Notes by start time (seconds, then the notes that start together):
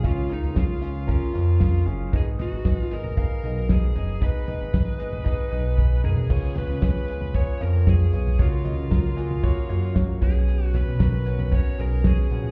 Already playing: C#4 F4 G#4 A#4 F5 G#5
0.03 C#2 C#3 C#4 F4 G#4 F5, kick, closed hi-hat
0.29 C#4 D#4 F4 G#4 A#4, closed hi-hat
0.44 C#2, closed hi-hat
0.55 C#4 F4 G#4 F5, kick, snare, closed hi-hat
0.59 F4
0.81 C#4 F4 G#4 F5, closed hi-hat
0.95 closed hi-hat
1.07 C#4 F4 G#4 A#4, kick, closed hi-hat
1.33 F2 C#4 F4 G#4 A#4, closed hi-hat
1.59 C#4 F4 G#4 F5, kick, snare, closed hi-hat
1.86 F#1 C#4 F4 G#4 F5, closed hi-hat
2.12 G#1 G#2 B3 D#4 G#4 D#5, kick, closed hi-hat
2.39 B3 D#4 F#4 G#4 D#5, closed hi-hat, floor tom
2.52 G#1, closed hi-hat
2.65 B3 D#4 G#4 D#5, kick, snare, closed hi-hat
2.81 F4
2.91 B3 D#4 G#4 A#4 D#5, closed hi-hat
3.04 floor tom
3.17 B3 D#4 G#4 F5, kick, closed hi-hat
3.43 B1 B3 D#4 G#4 D#5, closed hi-hat
3.69 B3 D#4 G#4 D#5, kick, snare, closed hi-hat
3.95 F#1 B3 D#4 G#4 D#5, closed hi-hat
4.21 G#1 G#2 B3 D#4 G#4 B4 D#5, kick, closed hi-hat
4.47 B3 D#4 G#4 D#5, closed hi-hat, floor tom
4.61 G#1
4.73 B3 D#4 G#4 D#5, kick, snare, closed hi-hat
4.99 B3 D#4 G#4 D#5, closed hi-hat
5.13 floor tom
5.24 B3 D#4 G#4 D#5, kick, closed hi-hat
5.51 B1 B3 D#4 G#4 D#5, closed hi-hat
5.77 B3 D#4 G#4 D#5, kick, high tom
6.03 B1 B3 D#4 G#4 A#4, mid tom
6.17 floor tom
6.29 C#2 C#3 B3 F4 G#4 C#5, kick, crash
6.55 B3 F4 G#4 B4 C#5, closed hi-hat, floor tom
6.69 C#2
6.82 B3 F4 G#4 B4 C#5, kick, snare, closed hi-hat
7.08 B3 F4 G#4 B4, closed hi-hat
7.21 floor tom
7.34 B3 F4 G#4 C#5, kick, closed hi-hat
7.60 F2 B3 F4 G#4 A#4 C#5, closed hi-hat
7.87 B3 F4 G#4 C#5, kick, snare, closed hi-hat
8.13 B1 B3 F4 G#4 C#5, closed hi-hat
8.26 floor tom
8.39 C#2 C#3 A#3 F4 F#4 C#5, kick, closed hi-hat
8.65 A#3 F4 F#4 D#5, closed hi-hat, floor tom
8.78 C#2
8.90 A#3 F4 F#4 A#4, kick, snare, closed hi-hat
9.16 A#3 F4 F#4 G#4, closed hi-hat
9.31 floor tom
9.43 A#3 F4 F#4 C#5, kick, closed hi-hat
9.69 F#2 A#3 F4 F#4 C#5, closed hi-hat
9.94 A#3 F4 F#4 C#5, kick, snare, closed hi-hat
10.21 B1 B2 B3 C#4 F#4 G#4 C#5, kick, closed hi-hat
10.48 closed hi-hat
10.66 F#4
10.74 B3 C#4 F#4 B4 C#5, closed hi-hat, floor tom
10.87 B1
10.99 B3 C#4 F#4 A#4 B4, kick, snare, closed hi-hat
11.26 B3 C#4 F#4 C#5, closed hi-hat
11.39 floor tom
11.52 B3 C#4 F#4 C#5, kick, closed hi-hat
11.78 B1 B3 C#4 F#4 G#4 A#4, closed hi-hat
12.04 B3 C#4 F#4 G#4 C#5, kick, snare, closed hi-hat
12.30 A#1 B2 B3 C#4 F#4 C#5, closed hi-hat
12.44 floor tom